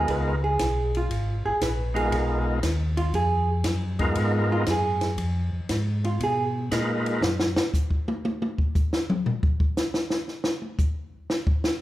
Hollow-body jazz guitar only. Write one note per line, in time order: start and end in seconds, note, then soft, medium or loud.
0.10 0.43 B4 medium
0.44 0.91 G#4 medium
0.97 1.43 F4 medium
1.46 1.61 G#4 medium
1.63 1.96 B4 medium
1.96 2.43 G#4 medium
2.97 3.13 F4 medium
3.15 3.48 G#4 medium
4.52 4.67 F4 medium
4.70 5.03 G#4 loud
6.05 6.20 F4 soft
6.24 6.43 G#4 medium